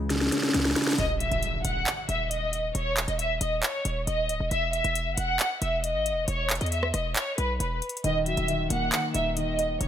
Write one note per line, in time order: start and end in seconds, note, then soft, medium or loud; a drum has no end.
0.00 0.30 C#2 loud
0.00 0.10 C#3 loud
0.00 0.54 E3 medium
0.00 1.00 G#3 medium
0.00 0.32 C#4 medium
0.00 0.10 E4 medium
0.10 0.53 C#3 medium
0.10 snare medium
0.10 closed hi-hat medium
0.16 snare medium
0.21 snare medium
0.27 snare medium
0.32 0.98 C#4 medium
0.32 snare medium
0.32 closed hi-hat medium
0.38 snare medium
0.43 snare medium
0.49 snare medium
0.54 0.75 C#2 loud
0.54 0.98 C#3 medium
0.54 snare medium
0.54 closed hi-hat medium
0.60 snare medium
0.65 snare medium
0.71 snare medium
0.76 0.98 E4 medium
0.76 snare loud
0.76 closed hi-hat medium
0.82 snare medium
0.82 closed hi-hat medium
0.87 snare loud
0.87 closed hi-hat medium
0.93 snare medium
0.98 1.30 D#1 loud
0.98 1.17 D#5 loud
0.98 closed hi-hat medium
0.98 impact medium
1.20 1.62 E5 medium
1.20 closed hi-hat medium
1.32 1.63 D#1 loud
1.32 closed hi-hat soft
1.43 closed hi-hat medium
1.65 1.86 D#1 loud
1.65 2.06 F#5 medium
1.65 closed hi-hat loud
1.87 clap loud
1.87 closed hi-hat medium
2.09 2.72 D#1 loud
2.09 2.27 E5 medium
2.09 closed hi-hat medium
2.31 2.72 D#5 medium
2.31 closed hi-hat medium
2.53 closed hi-hat medium
2.75 3.07 D#1 loud
2.75 3.06 C#5 loud
2.75 closed hi-hat medium
2.97 clap loud
2.97 closed hi-hat medium
2.97 open hi-hat medium
3.08 3.40 D#1 loud
3.08 3.17 D#5 medium
3.08 closed hi-hat soft
3.19 3.37 E5 medium
3.19 closed hi-hat medium
3.41 3.62 D#1 loud
3.41 3.60 D#5 medium
3.41 closed hi-hat loud
3.63 4.04 C#5 medium
3.63 clap loud
3.63 closed hi-hat medium
3.85 4.06 D#1 loud
3.85 closed hi-hat medium
4.07 4.31 D#1 loud
4.07 4.49 D#5 medium
4.07 closed hi-hat medium
4.29 4.40 C#1 loud
4.29 closed hi-hat medium
4.40 4.51 D#1 loud
4.51 4.83 E1 loud
4.51 4.70 E5 loud
4.51 closed hi-hat medium
4.73 5.15 E5 medium
4.73 closed hi-hat medium
4.84 5.08 E1 loud
4.84 closed hi-hat soft
4.96 closed hi-hat medium
5.06 5.17 F#1 loud
5.17 5.39 E1 loud
5.17 5.59 F#5 loud
5.17 closed hi-hat loud
5.39 clap loud
5.39 closed hi-hat medium
5.61 5.96 E1 loud
5.61 5.80 E5 medium
5.61 closed hi-hat medium
5.84 6.25 D#5 medium
5.84 closed hi-hat medium
5.95 6.13 G#1 loud
6.06 closed hi-hat medium
6.11 6.27 E1 loud
6.28 6.60 E1 loud
6.28 6.59 C#5 loud
6.28 closed hi-hat medium
6.50 clap loud
6.50 closed hi-hat medium
6.55 closed hi-hat medium
6.61 6.93 E2 loud
6.61 6.70 D#5 medium
6.61 closed hi-hat soft
6.66 closed hi-hat soft
6.72 6.90 E5 medium
6.72 closed hi-hat medium
6.83 cross-stick loud
6.94 7.15 E1 loud
6.94 7.12 D#5 medium
6.94 cross-stick medium
6.94 closed hi-hat loud
7.16 7.35 C#5 medium
7.16 clap loud
7.16 closed hi-hat medium
7.38 7.59 B1 loud
7.38 7.57 B4 medium
7.38 closed hi-hat medium
7.60 7.81 E1 loud
7.60 7.79 B4 medium
7.60 closed hi-hat medium
7.82 closed hi-hat medium
7.89 closed hi-hat medium
7.97 closed hi-hat medium
8.04 8.36 D#1 loud
8.04 8.47 D#3 loud
8.04 8.23 D#5 loud
8.04 closed hi-hat medium
8.26 9.37 F#3 medium
8.26 8.68 E5 medium
8.26 closed hi-hat medium
8.37 8.69 D#1 loud
8.37 closed hi-hat soft
8.48 8.91 D#3 medium
8.48 closed hi-hat medium
8.70 8.92 D#1 loud
8.70 9.81 A#3 medium
8.70 9.12 F#5 medium
8.70 closed hi-hat loud
8.92 9.35 D#3 medium
8.92 clap loud
8.92 closed hi-hat medium
9.14 9.78 D#1 loud
9.14 9.88 D#4 medium
9.14 9.33 E5 medium
9.14 closed hi-hat medium
9.37 9.79 D#3 medium
9.37 9.78 D#5 medium
9.37 closed hi-hat medium
9.59 9.88 D#5 medium
9.59 closed hi-hat medium
9.81 9.88 D#1 loud
9.81 9.88 D#3 medium
9.81 9.88 C#5 loud
9.81 closed hi-hat medium